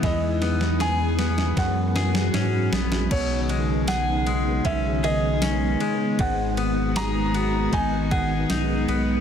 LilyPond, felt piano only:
\new Staff \with { instrumentName = "Felt piano" } { \time 4/4 \key b \major \tempo 4 = 78 dis''4 gis''4 fis''4. r8 | cis''4 fis''4 e''8 dis''4 r8 | fis''4 ais''4 gis''8 fis''4 r8 | }